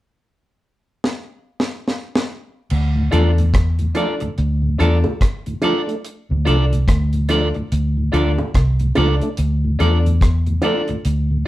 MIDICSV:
0, 0, Header, 1, 7, 480
1, 0, Start_track
1, 0, Key_signature, -1, "minor"
1, 0, Tempo, 834260
1, 1555, Time_signature, 4, 2, 24, 8
1, 6602, End_track
2, 0, Start_track
2, 0, Title_t, "Clean electric guitar"
2, 0, Program_c, 0, 27
2, 1793, Note_on_c, 0, 65, 83
2, 1798, Note_on_c, 0, 69, 91
2, 1803, Note_on_c, 0, 74, 91
2, 1895, Note_off_c, 0, 65, 0
2, 1898, Note_off_c, 0, 69, 0
2, 1900, Note_off_c, 0, 74, 0
2, 2273, Note_on_c, 0, 65, 70
2, 2279, Note_on_c, 0, 69, 71
2, 2285, Note_on_c, 0, 74, 85
2, 2375, Note_off_c, 0, 65, 0
2, 2378, Note_off_c, 0, 69, 0
2, 2381, Note_off_c, 0, 74, 0
2, 2758, Note_on_c, 0, 65, 90
2, 2763, Note_on_c, 0, 69, 91
2, 2768, Note_on_c, 0, 74, 95
2, 2858, Note_off_c, 0, 65, 0
2, 2860, Note_off_c, 0, 69, 0
2, 2863, Note_off_c, 0, 74, 0
2, 3235, Note_on_c, 0, 65, 85
2, 3239, Note_on_c, 0, 69, 89
2, 3244, Note_on_c, 0, 74, 93
2, 3336, Note_off_c, 0, 65, 0
2, 3338, Note_off_c, 0, 69, 0
2, 3341, Note_off_c, 0, 74, 0
2, 3714, Note_on_c, 0, 65, 84
2, 3720, Note_on_c, 0, 69, 86
2, 3725, Note_on_c, 0, 74, 94
2, 3816, Note_off_c, 0, 65, 0
2, 3819, Note_off_c, 0, 69, 0
2, 3821, Note_off_c, 0, 74, 0
2, 4193, Note_on_c, 0, 65, 76
2, 4200, Note_on_c, 0, 69, 83
2, 4205, Note_on_c, 0, 74, 94
2, 4295, Note_off_c, 0, 65, 0
2, 4299, Note_off_c, 0, 69, 0
2, 4301, Note_off_c, 0, 74, 0
2, 4675, Note_on_c, 0, 65, 90
2, 4683, Note_on_c, 0, 69, 92
2, 4686, Note_on_c, 0, 74, 107
2, 4777, Note_off_c, 0, 65, 0
2, 4780, Note_off_c, 0, 69, 0
2, 4782, Note_off_c, 0, 74, 0
2, 5154, Note_on_c, 0, 65, 83
2, 5159, Note_on_c, 0, 69, 93
2, 5165, Note_on_c, 0, 74, 102
2, 5256, Note_off_c, 0, 65, 0
2, 5258, Note_off_c, 0, 69, 0
2, 5261, Note_off_c, 0, 74, 0
2, 5635, Note_on_c, 0, 65, 76
2, 5640, Note_on_c, 0, 69, 92
2, 5645, Note_on_c, 0, 74, 101
2, 5736, Note_off_c, 0, 65, 0
2, 5739, Note_off_c, 0, 69, 0
2, 5741, Note_off_c, 0, 74, 0
2, 6114, Note_on_c, 0, 65, 80
2, 6120, Note_on_c, 0, 69, 80
2, 6125, Note_on_c, 0, 74, 81
2, 6216, Note_off_c, 0, 65, 0
2, 6219, Note_off_c, 0, 69, 0
2, 6221, Note_off_c, 0, 74, 0
2, 6602, End_track
3, 0, Start_track
3, 0, Title_t, "Grand piano"
3, 0, Program_c, 1, 0
3, 1789, Note_on_c, 1, 62, 92
3, 1792, Note_on_c, 1, 65, 76
3, 1796, Note_on_c, 1, 69, 96
3, 1928, Note_off_c, 1, 62, 0
3, 1930, Note_off_c, 1, 65, 0
3, 1932, Note_off_c, 1, 69, 0
3, 2270, Note_on_c, 1, 62, 85
3, 2275, Note_on_c, 1, 65, 84
3, 2278, Note_on_c, 1, 69, 92
3, 2409, Note_off_c, 1, 62, 0
3, 2411, Note_off_c, 1, 65, 0
3, 2413, Note_off_c, 1, 69, 0
3, 2421, Note_on_c, 1, 65, 26
3, 2422, Note_on_c, 1, 69, 26
3, 2458, Note_off_c, 1, 65, 0
3, 2459, Note_off_c, 1, 69, 0
3, 2752, Note_on_c, 1, 62, 89
3, 2755, Note_on_c, 1, 65, 80
3, 2759, Note_on_c, 1, 69, 101
3, 2890, Note_off_c, 1, 62, 0
3, 2892, Note_off_c, 1, 65, 0
3, 2893, Note_off_c, 1, 69, 0
3, 2902, Note_on_c, 1, 65, 23
3, 2902, Note_on_c, 1, 69, 23
3, 2939, Note_off_c, 1, 65, 0
3, 2939, Note_off_c, 1, 69, 0
3, 3231, Note_on_c, 1, 62, 86
3, 3236, Note_on_c, 1, 65, 89
3, 3240, Note_on_c, 1, 69, 99
3, 3370, Note_off_c, 1, 62, 0
3, 3372, Note_off_c, 1, 65, 0
3, 3374, Note_off_c, 1, 69, 0
3, 3712, Note_on_c, 1, 62, 96
3, 3714, Note_on_c, 1, 65, 82
3, 3717, Note_on_c, 1, 69, 92
3, 3850, Note_off_c, 1, 62, 0
3, 3851, Note_off_c, 1, 65, 0
3, 3853, Note_off_c, 1, 69, 0
3, 4192, Note_on_c, 1, 62, 86
3, 4196, Note_on_c, 1, 65, 87
3, 4199, Note_on_c, 1, 69, 96
3, 4330, Note_off_c, 1, 62, 0
3, 4332, Note_off_c, 1, 65, 0
3, 4334, Note_off_c, 1, 69, 0
3, 4343, Note_on_c, 1, 65, 24
3, 4344, Note_on_c, 1, 69, 25
3, 4380, Note_off_c, 1, 65, 0
3, 4380, Note_off_c, 1, 69, 0
3, 4672, Note_on_c, 1, 62, 92
3, 4675, Note_on_c, 1, 65, 79
3, 4678, Note_on_c, 1, 69, 90
3, 4810, Note_off_c, 1, 62, 0
3, 4810, Note_off_c, 1, 69, 0
3, 4811, Note_off_c, 1, 65, 0
3, 4819, Note_on_c, 1, 65, 21
3, 4819, Note_on_c, 1, 69, 25
3, 4858, Note_off_c, 1, 65, 0
3, 4858, Note_off_c, 1, 69, 0
3, 5153, Note_on_c, 1, 62, 92
3, 5156, Note_on_c, 1, 65, 81
3, 5160, Note_on_c, 1, 69, 86
3, 5291, Note_off_c, 1, 62, 0
3, 5292, Note_off_c, 1, 65, 0
3, 5294, Note_off_c, 1, 69, 0
3, 5632, Note_on_c, 1, 62, 100
3, 5635, Note_on_c, 1, 65, 85
3, 5639, Note_on_c, 1, 69, 101
3, 5770, Note_off_c, 1, 62, 0
3, 5772, Note_off_c, 1, 65, 0
3, 5773, Note_off_c, 1, 69, 0
3, 6112, Note_on_c, 1, 62, 95
3, 6116, Note_on_c, 1, 65, 83
3, 6119, Note_on_c, 1, 69, 106
3, 6250, Note_off_c, 1, 62, 0
3, 6252, Note_off_c, 1, 65, 0
3, 6254, Note_off_c, 1, 69, 0
3, 6261, Note_on_c, 1, 65, 24
3, 6262, Note_on_c, 1, 69, 27
3, 6299, Note_off_c, 1, 65, 0
3, 6300, Note_off_c, 1, 69, 0
3, 6602, End_track
4, 0, Start_track
4, 0, Title_t, "Tonewheel organ"
4, 0, Program_c, 2, 16
4, 1701, Note_on_c, 2, 38, 58
4, 1701, Note_on_c, 2, 45, 50
4, 1742, Note_off_c, 2, 38, 0
4, 1742, Note_off_c, 2, 45, 0
4, 1797, Note_on_c, 2, 53, 66
4, 1798, Note_on_c, 2, 57, 56
4, 1800, Note_on_c, 2, 62, 77
4, 1861, Note_off_c, 2, 53, 0
4, 1861, Note_off_c, 2, 57, 0
4, 1862, Note_off_c, 2, 62, 0
4, 1944, Note_on_c, 2, 38, 54
4, 1945, Note_on_c, 2, 45, 50
4, 1984, Note_off_c, 2, 38, 0
4, 1984, Note_off_c, 2, 45, 0
4, 2182, Note_on_c, 2, 38, 55
4, 2183, Note_on_c, 2, 45, 62
4, 2223, Note_off_c, 2, 38, 0
4, 2223, Note_off_c, 2, 45, 0
4, 2277, Note_on_c, 2, 53, 69
4, 2279, Note_on_c, 2, 57, 64
4, 2282, Note_on_c, 2, 62, 78
4, 2340, Note_off_c, 2, 53, 0
4, 2342, Note_off_c, 2, 57, 0
4, 2343, Note_off_c, 2, 62, 0
4, 2423, Note_on_c, 2, 38, 58
4, 2423, Note_on_c, 2, 45, 60
4, 2464, Note_off_c, 2, 38, 0
4, 2464, Note_off_c, 2, 45, 0
4, 2658, Note_on_c, 2, 38, 55
4, 2659, Note_on_c, 2, 45, 56
4, 2701, Note_off_c, 2, 38, 0
4, 2701, Note_off_c, 2, 45, 0
4, 2754, Note_on_c, 2, 53, 76
4, 2755, Note_on_c, 2, 57, 73
4, 2755, Note_on_c, 2, 62, 79
4, 2819, Note_off_c, 2, 53, 0
4, 2819, Note_off_c, 2, 57, 0
4, 2819, Note_off_c, 2, 62, 0
4, 2900, Note_on_c, 2, 45, 57
4, 2901, Note_on_c, 2, 38, 56
4, 2942, Note_off_c, 2, 45, 0
4, 2943, Note_off_c, 2, 38, 0
4, 3144, Note_on_c, 2, 45, 54
4, 3146, Note_on_c, 2, 38, 62
4, 3184, Note_off_c, 2, 45, 0
4, 3185, Note_off_c, 2, 38, 0
4, 3235, Note_on_c, 2, 53, 78
4, 3239, Note_on_c, 2, 57, 62
4, 3239, Note_on_c, 2, 62, 83
4, 3300, Note_off_c, 2, 53, 0
4, 3301, Note_off_c, 2, 57, 0
4, 3302, Note_off_c, 2, 62, 0
4, 3382, Note_on_c, 2, 57, 58
4, 3386, Note_on_c, 2, 62, 65
4, 3423, Note_off_c, 2, 57, 0
4, 3425, Note_off_c, 2, 62, 0
4, 3625, Note_on_c, 2, 38, 57
4, 3626, Note_on_c, 2, 45, 47
4, 3665, Note_off_c, 2, 38, 0
4, 3665, Note_off_c, 2, 45, 0
4, 3716, Note_on_c, 2, 57, 62
4, 3718, Note_on_c, 2, 53, 71
4, 3721, Note_on_c, 2, 62, 75
4, 3780, Note_off_c, 2, 57, 0
4, 3781, Note_off_c, 2, 53, 0
4, 3783, Note_off_c, 2, 62, 0
4, 3870, Note_on_c, 2, 38, 52
4, 3870, Note_on_c, 2, 45, 50
4, 3907, Note_off_c, 2, 38, 0
4, 3907, Note_off_c, 2, 45, 0
4, 4107, Note_on_c, 2, 38, 59
4, 4108, Note_on_c, 2, 45, 55
4, 4146, Note_off_c, 2, 38, 0
4, 4146, Note_off_c, 2, 45, 0
4, 4202, Note_on_c, 2, 53, 71
4, 4202, Note_on_c, 2, 57, 69
4, 4205, Note_on_c, 2, 62, 77
4, 4263, Note_off_c, 2, 53, 0
4, 4263, Note_off_c, 2, 57, 0
4, 4265, Note_off_c, 2, 62, 0
4, 4348, Note_on_c, 2, 38, 54
4, 4350, Note_on_c, 2, 45, 58
4, 4386, Note_off_c, 2, 38, 0
4, 4387, Note_off_c, 2, 45, 0
4, 4587, Note_on_c, 2, 38, 50
4, 4588, Note_on_c, 2, 45, 53
4, 4626, Note_off_c, 2, 38, 0
4, 4626, Note_off_c, 2, 45, 0
4, 4678, Note_on_c, 2, 53, 72
4, 4681, Note_on_c, 2, 57, 59
4, 4681, Note_on_c, 2, 62, 73
4, 4741, Note_off_c, 2, 53, 0
4, 4743, Note_off_c, 2, 57, 0
4, 4743, Note_off_c, 2, 62, 0
4, 4828, Note_on_c, 2, 38, 59
4, 4828, Note_on_c, 2, 45, 61
4, 4866, Note_off_c, 2, 38, 0
4, 4866, Note_off_c, 2, 45, 0
4, 5067, Note_on_c, 2, 38, 58
4, 5067, Note_on_c, 2, 45, 61
4, 5106, Note_off_c, 2, 38, 0
4, 5106, Note_off_c, 2, 45, 0
4, 5164, Note_on_c, 2, 57, 68
4, 5165, Note_on_c, 2, 53, 69
4, 5167, Note_on_c, 2, 62, 73
4, 5224, Note_off_c, 2, 57, 0
4, 5225, Note_off_c, 2, 53, 0
4, 5226, Note_off_c, 2, 62, 0
4, 5307, Note_on_c, 2, 57, 64
4, 5314, Note_on_c, 2, 62, 76
4, 5346, Note_off_c, 2, 57, 0
4, 5349, Note_off_c, 2, 62, 0
4, 5550, Note_on_c, 2, 45, 56
4, 5554, Note_on_c, 2, 38, 47
4, 5587, Note_off_c, 2, 45, 0
4, 5589, Note_off_c, 2, 38, 0
4, 5644, Note_on_c, 2, 53, 73
4, 5645, Note_on_c, 2, 57, 63
4, 5647, Note_on_c, 2, 62, 71
4, 5704, Note_off_c, 2, 53, 0
4, 5705, Note_off_c, 2, 57, 0
4, 5706, Note_off_c, 2, 62, 0
4, 5791, Note_on_c, 2, 45, 52
4, 5792, Note_on_c, 2, 38, 51
4, 5828, Note_off_c, 2, 38, 0
4, 5828, Note_off_c, 2, 45, 0
4, 6025, Note_on_c, 2, 45, 61
4, 6027, Note_on_c, 2, 38, 61
4, 6065, Note_off_c, 2, 45, 0
4, 6066, Note_off_c, 2, 38, 0
4, 6116, Note_on_c, 2, 53, 77
4, 6116, Note_on_c, 2, 57, 67
4, 6118, Note_on_c, 2, 62, 84
4, 6180, Note_off_c, 2, 53, 0
4, 6180, Note_off_c, 2, 57, 0
4, 6181, Note_off_c, 2, 62, 0
4, 6266, Note_on_c, 2, 38, 59
4, 6268, Note_on_c, 2, 45, 61
4, 6305, Note_off_c, 2, 38, 0
4, 6307, Note_off_c, 2, 45, 0
4, 6506, Note_on_c, 2, 45, 51
4, 6507, Note_on_c, 2, 38, 56
4, 6545, Note_off_c, 2, 45, 0
4, 6546, Note_off_c, 2, 38, 0
4, 6602, End_track
5, 0, Start_track
5, 0, Title_t, "Fingered electric bass"
5, 0, Program_c, 3, 33
5, 1562, Note_on_c, 3, 38, 96
5, 1775, Note_off_c, 3, 38, 0
5, 1801, Note_on_c, 3, 40, 78
5, 2255, Note_off_c, 3, 40, 0
5, 2523, Note_on_c, 3, 38, 94
5, 2736, Note_off_c, 3, 38, 0
5, 2764, Note_on_c, 3, 40, 83
5, 2891, Note_off_c, 3, 40, 0
5, 3630, Note_on_c, 3, 38, 94
5, 3711, Note_off_c, 3, 38, 0
5, 3724, Note_on_c, 3, 36, 94
5, 3937, Note_off_c, 3, 36, 0
5, 3960, Note_on_c, 3, 38, 99
5, 4321, Note_off_c, 3, 38, 0
5, 4443, Note_on_c, 3, 38, 99
5, 4656, Note_off_c, 3, 38, 0
5, 4681, Note_on_c, 3, 38, 87
5, 4810, Note_off_c, 3, 38, 0
5, 4920, Note_on_c, 3, 36, 78
5, 5135, Note_off_c, 3, 36, 0
5, 5164, Note_on_c, 3, 37, 105
5, 5292, Note_off_c, 3, 37, 0
5, 5401, Note_on_c, 3, 38, 108
5, 5615, Note_off_c, 3, 38, 0
5, 5641, Note_on_c, 3, 40, 87
5, 6095, Note_off_c, 3, 40, 0
5, 6361, Note_on_c, 3, 38, 88
5, 6575, Note_off_c, 3, 38, 0
5, 6602, End_track
6, 0, Start_track
6, 0, Title_t, "Muted clean electric guitar strokes"
6, 2422, Note_on_c, 9, 29, 42
6, 2480, Note_off_c, 9, 29, 0
6, 4345, Note_on_c, 9, 29, 44
6, 4403, Note_off_c, 9, 29, 0
6, 6265, Note_on_c, 9, 29, 44
6, 6322, Note_off_c, 9, 29, 0
6, 6602, End_track
7, 0, Start_track
7, 0, Title_t, "Drums"
7, 599, Note_on_c, 9, 38, 70
7, 656, Note_off_c, 9, 38, 0
7, 919, Note_on_c, 9, 38, 70
7, 977, Note_off_c, 9, 38, 0
7, 1079, Note_on_c, 9, 38, 70
7, 1136, Note_off_c, 9, 38, 0
7, 1240, Note_on_c, 9, 38, 92
7, 1297, Note_off_c, 9, 38, 0
7, 1554, Note_on_c, 9, 49, 85
7, 1611, Note_off_c, 9, 49, 0
7, 1797, Note_on_c, 9, 60, 49
7, 1798, Note_on_c, 9, 42, 70
7, 1855, Note_off_c, 9, 42, 0
7, 1855, Note_off_c, 9, 60, 0
7, 1946, Note_on_c, 9, 42, 57
7, 2004, Note_off_c, 9, 42, 0
7, 2035, Note_on_c, 9, 36, 124
7, 2039, Note_on_c, 9, 42, 95
7, 2041, Note_on_c, 9, 37, 120
7, 2093, Note_off_c, 9, 36, 0
7, 2096, Note_off_c, 9, 42, 0
7, 2098, Note_off_c, 9, 37, 0
7, 2179, Note_on_c, 9, 42, 43
7, 2237, Note_off_c, 9, 42, 0
7, 2272, Note_on_c, 9, 42, 59
7, 2272, Note_on_c, 9, 61, 79
7, 2329, Note_off_c, 9, 61, 0
7, 2330, Note_off_c, 9, 42, 0
7, 2418, Note_on_c, 9, 42, 46
7, 2476, Note_off_c, 9, 42, 0
7, 2518, Note_on_c, 9, 42, 90
7, 2575, Note_off_c, 9, 42, 0
7, 2755, Note_on_c, 9, 60, 50
7, 2761, Note_on_c, 9, 42, 74
7, 2813, Note_off_c, 9, 60, 0
7, 2819, Note_off_c, 9, 42, 0
7, 2899, Note_on_c, 9, 60, 79
7, 2956, Note_off_c, 9, 60, 0
7, 2996, Note_on_c, 9, 36, 100
7, 2997, Note_on_c, 9, 42, 91
7, 3001, Note_on_c, 9, 37, 97
7, 3054, Note_off_c, 9, 36, 0
7, 3055, Note_off_c, 9, 42, 0
7, 3059, Note_off_c, 9, 37, 0
7, 3142, Note_on_c, 9, 42, 44
7, 3199, Note_off_c, 9, 42, 0
7, 3230, Note_on_c, 9, 60, 72
7, 3230, Note_on_c, 9, 61, 75
7, 3233, Note_on_c, 9, 42, 72
7, 3288, Note_off_c, 9, 60, 0
7, 3288, Note_off_c, 9, 61, 0
7, 3290, Note_off_c, 9, 42, 0
7, 3387, Note_on_c, 9, 42, 44
7, 3445, Note_off_c, 9, 42, 0
7, 3478, Note_on_c, 9, 42, 81
7, 3535, Note_off_c, 9, 42, 0
7, 3721, Note_on_c, 9, 42, 66
7, 3721, Note_on_c, 9, 60, 46
7, 3778, Note_off_c, 9, 60, 0
7, 3779, Note_off_c, 9, 42, 0
7, 3870, Note_on_c, 9, 42, 56
7, 3928, Note_off_c, 9, 42, 0
7, 3956, Note_on_c, 9, 36, 112
7, 3959, Note_on_c, 9, 42, 102
7, 3961, Note_on_c, 9, 37, 117
7, 4014, Note_off_c, 9, 36, 0
7, 4016, Note_off_c, 9, 42, 0
7, 4019, Note_off_c, 9, 37, 0
7, 4101, Note_on_c, 9, 42, 46
7, 4158, Note_off_c, 9, 42, 0
7, 4192, Note_on_c, 9, 42, 69
7, 4195, Note_on_c, 9, 61, 83
7, 4203, Note_on_c, 9, 37, 51
7, 4250, Note_off_c, 9, 42, 0
7, 4253, Note_off_c, 9, 61, 0
7, 4260, Note_off_c, 9, 37, 0
7, 4340, Note_on_c, 9, 42, 45
7, 4398, Note_off_c, 9, 42, 0
7, 4441, Note_on_c, 9, 42, 93
7, 4499, Note_off_c, 9, 42, 0
7, 4679, Note_on_c, 9, 60, 56
7, 4682, Note_on_c, 9, 42, 82
7, 4736, Note_off_c, 9, 60, 0
7, 4740, Note_off_c, 9, 42, 0
7, 4824, Note_on_c, 9, 60, 83
7, 4881, Note_off_c, 9, 60, 0
7, 4916, Note_on_c, 9, 36, 85
7, 4916, Note_on_c, 9, 42, 86
7, 4921, Note_on_c, 9, 37, 113
7, 4974, Note_off_c, 9, 36, 0
7, 4974, Note_off_c, 9, 42, 0
7, 4978, Note_off_c, 9, 37, 0
7, 5060, Note_on_c, 9, 42, 47
7, 5118, Note_off_c, 9, 42, 0
7, 5152, Note_on_c, 9, 42, 72
7, 5152, Note_on_c, 9, 60, 75
7, 5152, Note_on_c, 9, 61, 71
7, 5209, Note_off_c, 9, 60, 0
7, 5209, Note_off_c, 9, 61, 0
7, 5210, Note_off_c, 9, 42, 0
7, 5301, Note_on_c, 9, 42, 43
7, 5359, Note_off_c, 9, 42, 0
7, 5393, Note_on_c, 9, 42, 96
7, 5451, Note_off_c, 9, 42, 0
7, 5638, Note_on_c, 9, 42, 64
7, 5639, Note_on_c, 9, 60, 43
7, 5695, Note_off_c, 9, 42, 0
7, 5696, Note_off_c, 9, 60, 0
7, 5789, Note_on_c, 9, 42, 55
7, 5847, Note_off_c, 9, 42, 0
7, 5876, Note_on_c, 9, 36, 107
7, 5880, Note_on_c, 9, 42, 94
7, 5883, Note_on_c, 9, 37, 114
7, 5933, Note_off_c, 9, 36, 0
7, 5938, Note_off_c, 9, 42, 0
7, 5940, Note_off_c, 9, 37, 0
7, 6021, Note_on_c, 9, 42, 38
7, 6078, Note_off_c, 9, 42, 0
7, 6109, Note_on_c, 9, 61, 84
7, 6111, Note_on_c, 9, 42, 75
7, 6166, Note_off_c, 9, 61, 0
7, 6168, Note_off_c, 9, 42, 0
7, 6259, Note_on_c, 9, 42, 43
7, 6316, Note_off_c, 9, 42, 0
7, 6357, Note_on_c, 9, 42, 95
7, 6415, Note_off_c, 9, 42, 0
7, 6602, End_track
0, 0, End_of_file